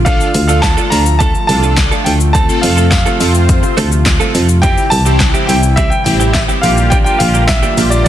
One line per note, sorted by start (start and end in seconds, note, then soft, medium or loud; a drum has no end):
0.00 0.20 A#1 medium
0.00 2.31 D3 medium
0.00 2.31 F4 medium
0.05 2.32 F3 medium
0.05 0.32 A3 medium
0.05 4.59 A3 medium
0.05 0.28 D4 medium
0.05 0.32 D4 medium
0.05 0.28 F4 medium
0.05 0.33 F4 medium
0.05 0.28 A4 medium
0.05 0.33 A4 medium
0.05 0.46 F5 loud
0.05 kick loud
0.05 closed hi-hat medium
0.05 shaker medium
0.21 shaker medium
0.34 0.77 D2 loud
0.34 muted clean electric guitar stroke soft
0.34 open hi-hat medium
0.34 shaker medium
0.48 0.62 A3 medium
0.48 0.99 D4 medium
0.48 0.62 D4 medium
0.48 0.99 F4 medium
0.48 0.63 F4 medium
0.48 0.62 A4 medium
0.48 1.00 A4 medium
0.48 0.63 F5 medium
0.48 shaker medium
0.62 0.92 A5 loud
0.62 kick loud
0.62 snare medium
0.62 clap loud
0.62 closed hi-hat medium
0.62 tambourine medium
0.62 shaker medium
0.77 0.90 A3 medium
0.77 0.91 D4 medium
0.77 0.91 F4 medium
0.77 0.92 A4 medium
0.77 shaker medium
0.90 1.34 D2 medium
0.90 1.05 A3 medium
0.90 1.06 D4 medium
0.90 1.05 F4 medium
0.90 1.04 A4 medium
0.90 1.18 A#5 loud
0.90 open hi-hat medium
0.90 shaker medium
1.06 muted clean electric guitar stroke medium
1.06 shaker medium
1.19 1.38 A3 medium
1.19 1.34 D4 medium
1.19 1.34 F4 loud
1.19 1.33 A4 loud
1.19 1.46 A5 loud
1.19 kick loud
1.19 closed hi-hat medium
1.19 shaker medium
1.34 muted clean electric guitar stroke soft
1.34 shaker medium
1.47 1.92 C2 loud
1.47 1.92 D4 medium
1.47 1.92 F4 medium
1.47 1.92 A4 medium
1.47 2.07 A5 loud
1.47 muted clean electric guitar stroke soft
1.47 open hi-hat medium
1.47 shaker soft
1.63 1.76 A3 medium
1.63 1.76 D4 medium
1.63 1.77 F4 medium
1.63 1.77 A4 medium
1.63 shaker medium
1.77 muted clean electric guitar stroke soft
1.77 kick medium
1.77 snare loud
1.77 clap loud
1.77 closed hi-hat medium
1.77 tambourine medium
1.77 shaker medium
1.91 2.04 A3 medium
1.91 2.05 D4 medium
1.91 2.06 F4 medium
1.91 2.06 A4 medium
1.91 shaker soft
2.04 2.49 D2 medium
2.04 2.20 A3 medium
2.04 2.20 D4 medium
2.04 2.20 F4 medium
2.04 2.19 A4 medium
2.04 2.11 G5 medium
2.04 open hi-hat medium
2.04 shaker medium
2.20 muted clean electric guitar stroke soft
2.20 shaker medium
2.33 4.61 C3 medium
2.33 4.61 F3 medium
2.33 2.61 A3 medium
2.33 2.61 C4 medium
2.33 2.42 F4 medium
2.33 4.61 F4 medium
2.33 2.61 F4 medium
2.33 2.42 A4 medium
2.33 2.62 A4 medium
2.33 2.63 A5 loud
2.33 kick loud
2.33 closed hi-hat medium
2.33 shaker medium
2.49 2.85 C4 medium
2.49 2.85 F4 medium
2.49 2.85 A4 medium
2.49 shaker medium
2.62 3.06 F2 loud
2.62 2.89 F5 medium
2.62 muted clean electric guitar stroke soft
2.62 open hi-hat medium
2.62 shaker medium
2.77 2.90 A3 medium
2.77 2.91 C4 medium
2.77 2.91 F4 medium
2.77 2.91 A4 medium
2.77 shaker medium
2.90 4.30 F5 medium
2.90 muted clean electric guitar stroke soft
2.90 kick loud
2.90 snare loud
2.90 clap loud
2.90 closed hi-hat medium
2.90 tambourine medium
2.90 shaker medium
3.06 3.19 A3 medium
3.06 3.19 C4 medium
3.06 3.20 F4 medium
3.06 3.20 A4 medium
3.06 shaker medium
3.20 3.63 F2 medium
3.20 3.34 A3 medium
3.20 3.78 C4 medium
3.20 3.34 C4 medium
3.20 3.78 F4 medium
3.20 3.34 F4 medium
3.20 3.33 A4 medium
3.20 3.78 C5 medium
3.20 open hi-hat medium
3.20 shaker medium
3.34 muted clean electric guitar stroke soft
3.34 shaker medium
3.49 kick loud
3.49 closed hi-hat medium
3.49 shaker medium
3.63 muted clean electric guitar stroke soft
3.63 shaker medium
3.77 4.20 D2 loud
3.77 3.95 A3 medium
3.77 3.92 C4 medium
3.77 3.91 F4 loud
3.77 3.90 A4 loud
3.77 open hi-hat medium
3.77 shaker medium
3.91 muted clean electric guitar stroke medium
3.91 shaker medium
4.06 muted clean electric guitar stroke soft
4.06 kick loud
4.06 snare medium
4.06 clap loud
4.06 closed hi-hat medium
4.06 tambourine medium
4.06 shaker medium
4.20 4.33 A3 medium
4.20 4.34 C4 medium
4.20 4.34 F4 medium
4.20 4.35 A4 medium
4.20 shaker soft
4.34 4.77 F2 medium
4.34 4.48 A3 medium
4.34 4.48 C4 medium
4.34 4.48 F4 medium
4.34 4.47 A4 medium
4.34 open hi-hat medium
4.34 shaker medium
4.49 muted clean electric guitar stroke soft
4.49 shaker medium
4.62 6.61 C3 medium
4.62 6.61 E3 medium
4.62 4.89 G3 medium
4.62 8.08 G3 medium
4.62 4.85 C4 medium
4.62 4.90 C4 medium
4.62 4.85 E4 medium
4.62 6.61 E4 medium
4.62 4.90 E4 loud
4.62 4.85 G4 medium
4.62 4.90 G4 medium
4.62 4.92 G5 loud
4.62 kick loud
4.62 closed hi-hat medium
4.62 shaker medium
4.78 shaker medium
4.90 5.34 C2 loud
4.90 5.50 A5 loud
4.90 muted clean electric guitar stroke soft
4.90 open hi-hat medium
4.90 shaker medium
5.05 5.19 G3 medium
5.05 5.56 C4 medium
5.05 5.19 C4 medium
5.05 5.56 E4 medium
5.05 5.20 E4 medium
5.05 5.19 G4 medium
5.05 5.57 G4 medium
5.05 shaker medium
5.20 muted clean electric guitar stroke soft
5.20 kick loud
5.20 snare loud
5.20 clap loud
5.20 closed hi-hat medium
5.20 tambourine medium
5.20 shaker medium
5.34 5.47 G3 medium
5.34 5.48 C4 medium
5.34 5.48 E4 medium
5.34 5.49 G4 medium
5.34 shaker medium
5.47 5.91 C2 medium
5.47 5.62 G3 medium
5.47 5.63 C4 medium
5.47 5.62 E4 medium
5.47 5.62 G4 medium
5.47 5.78 G5 loud
5.47 open hi-hat medium
5.47 shaker medium
5.63 muted clean electric guitar stroke soft
5.63 shaker medium
5.76 5.95 G3 medium
5.76 5.91 C4 loud
5.76 5.91 E4 loud
5.76 5.90 G4 loud
5.76 5.91 E5 loud
5.76 kick loud
5.76 closed hi-hat medium
5.76 shaker medium
5.90 6.03 G5 loud
5.90 muted clean electric guitar stroke medium
5.90 shaker medium
6.04 6.49 A1 loud
6.04 6.49 C4 medium
6.04 6.49 E4 medium
6.04 6.49 G4 medium
6.04 6.35 G5 loud
6.04 muted clean electric guitar stroke soft
6.04 open hi-hat medium
6.04 shaker medium
6.20 6.33 G3 medium
6.20 6.33 C4 medium
6.20 6.34 E4 medium
6.20 6.34 G4 medium
6.20 shaker medium
6.33 6.40 E5 medium
6.33 kick loud
6.33 snare medium
6.33 clap loud
6.33 closed hi-hat medium
6.33 tambourine loud
6.33 shaker medium
6.48 6.62 G3 medium
6.48 6.63 C4 medium
6.48 6.63 E4 medium
6.48 6.63 G4 medium
6.48 shaker soft
6.61 7.06 A#1 medium
6.61 8.08 D3 medium
6.61 6.77 F3 medium
6.61 6.97 A#3 medium
6.61 8.08 A#3 medium
6.61 6.77 A#3 medium
6.61 6.77 D4 medium
6.61 8.08 F4 medium
6.61 6.98 F4 medium
6.61 6.98 G4 medium
6.61 6.76 G4 medium
6.61 6.92 F5 loud
6.61 open hi-hat medium
6.61 shaker medium
6.77 muted clean electric guitar stroke soft
6.77 shaker medium
6.90 7.18 F3 medium
6.90 7.18 A#3 medium
6.90 7.18 D4 medium
6.90 7.19 G4 medium
6.90 6.95 G5 loud
6.90 kick loud
6.90 closed hi-hat medium
6.90 shaker medium
7.04 7.42 A#3 medium
7.04 7.42 F4 medium
7.04 7.42 G4 medium
7.04 7.20 G5 medium
7.04 shaker medium
7.19 7.63 A#1 loud
7.19 7.49 F5 medium
7.19 open hi-hat medium
7.19 shaker medium
7.34 7.47 F3 medium
7.34 7.48 A#3 medium
7.34 7.48 D4 medium
7.34 7.48 G4 medium
7.34 shaker medium
7.47 7.92 E5 loud
7.47 muted clean electric guitar stroke soft
7.47 kick loud
7.47 snare loud
7.47 clap loud
7.47 closed hi-hat medium
7.47 tambourine medium
7.47 shaker medium
7.63 7.76 F3 medium
7.63 7.76 A#3 medium
7.63 7.77 D4 medium
7.63 7.77 G4 medium
7.63 shaker medium
7.77 8.08 A#1 loud
7.77 7.91 F3 medium
7.77 8.08 A#3 medium
7.77 7.91 A#3 medium
7.77 7.91 D4 medium
7.77 8.08 F4 medium
7.77 8.08 G4 medium
7.77 7.90 G4 medium
7.77 open hi-hat medium
7.77 shaker medium
7.90 8.03 D5 medium
7.90 muted clean electric guitar stroke medium
7.90 shaker medium
8.04 8.08 D5 medium